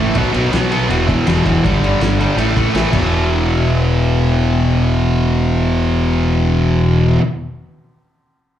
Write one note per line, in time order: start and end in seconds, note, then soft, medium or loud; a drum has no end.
0.00 0.15 A2 medium
0.00 0.15 E3 medium
0.00 0.16 A3 medium
0.15 0.28 B1 medium
0.15 0.32 B2 loud
0.15 0.32 F#3 loud
0.15 0.33 B3 loud
0.15 kick loud
0.15 ride medium
0.33 0.46 B1 medium
0.33 0.50 B2 medium
0.33 0.51 F#3 medium
0.33 0.52 B3 medium
0.33 ride medium
0.52 0.76 B1 medium
0.52 0.70 B2 medium
0.52 0.71 F#3 loud
0.52 0.72 B3 medium
0.52 snare loud
0.52 ride medium
0.71 0.88 B2 medium
0.71 0.89 F#3 medium
0.71 0.90 B3 loud
0.71 ride medium
0.89 1.13 E1 medium
0.89 1.06 E2 medium
0.89 1.07 B2 medium
0.89 1.08 E3 loud
0.89 ride medium
1.08 1.26 E2 medium
1.08 1.26 B2 medium
1.08 1.27 E3 medium
1.08 kick medium
1.08 ride medium
1.27 1.39 E1 medium
1.27 1.44 E2 medium
1.27 1.45 B2 medium
1.27 1.45 E3 medium
1.27 snare loud
1.27 ride medium
1.45 1.57 E1 loud
1.45 1.62 E2 medium
1.45 1.63 B2 medium
1.45 1.63 E3 medium
1.45 kick medium
1.45 ride medium
1.65 1.76 G1 medium
1.65 1.83 G2 loud
1.65 1.84 D3 loud
1.65 1.83 G3 loud
1.65 kick loud
1.65 ride medium
1.80 1.93 G1 medium
1.80 2.01 G2 medium
1.80 ride medium
1.85 2.02 D3 medium
1.85 2.02 G3 loud
2.01 2.25 G1 medium
2.01 2.18 G2 medium
2.01 2.20 D3 medium
2.01 2.20 G3 medium
2.01 snare loud
2.01 ride medium
2.20 2.37 G2 medium
2.20 2.36 D3 medium
2.20 2.37 G3 loud
2.20 ride medium
2.36 2.61 A1 medium
2.36 2.55 A2 medium
2.36 2.56 E3 medium
2.36 2.56 A3 loud
2.36 ride medium
2.56 2.73 A2 medium
2.56 2.73 E3 medium
2.56 2.74 A3 medium
2.56 kick medium
2.56 ride medium
2.74 2.86 A1 medium
2.74 2.92 A2 medium
2.74 2.93 E3 loud
2.74 2.93 A3 medium
2.74 snare medium
2.74 ride medium
2.91 7.16 E1 medium
2.91 7.17 E2 medium
2.91 7.19 B2 loud
2.91 kick loud
2.91 crash medium
2.95 7.22 E3 medium